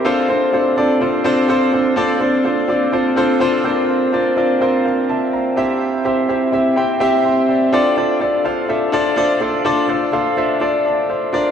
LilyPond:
\new Staff \with { instrumentName = "Grand piano" } { \time 4/4 \key f \major \tempo 4 = 125 << { r1 | r1 | r2 <c'' f''>8 <e'' a''>8 <f'' bes''>4 | r2. <g'' c'''>8 <d'' g''>8~ |
<d'' g''>8 r2. r8 | r2 r8 <a' d''>8 <c'' f''>4 | } \\ { <c' d' f' a' c''>8 <c' d' f' a' c''>8 <c' d' f' a' c''>8 <c' d' f' a' d''>8 <c' d' f' a' c''>8 <c' d' f' a' c''>8 <c' d' f' a' c''>8 <c' d' f' a' c''>8 | <c' d' f' a' d''>8 <c' d' f' a' c''>8 <c' d' f' a' c''>8 <c' d' f' a' d''>8 <c' d' f' a' c''>8 <c' d' f' a' c''>8 <c' d' f' a' c''>8 <c' d' f' bes' c''>8~ | <c' d' f' bes' c''>8 <c' d' f' bes' d''>8 <c' d' f' bes' d''>8 <c' d' f' bes' c''>8 r4. <c' e' g' c'' e''>8~ | <c' e' g' c'' e''>8 <c' e' g' c'' e''>8 <c' e' g' c'' e''>8 <c' e' g' c'' e''>8 <c' e' g' c'' g''>8 <c' e' g' c'' e''>8 r4 |
<d' f' a' c'' d''>8 <d' f' a' c'' d''>8 <d' f' a' c'' d''>8 <d' f' a' c'' f''>8 <d' f' a' c'' e''>8 <d' f' a' c'' d''>8 <d' f' a' c'' d''>8 <d' f' a' c'' d''>8 | <d' f' a' c'' d''>8 <d' f' a' c'' d''>8 <d' f' a' c'' f''>8 <d' f' a' c'' e''>8 <d' f' a' c'' d''>8 r4 <d' f' bes' c'' d''>8 | } >> }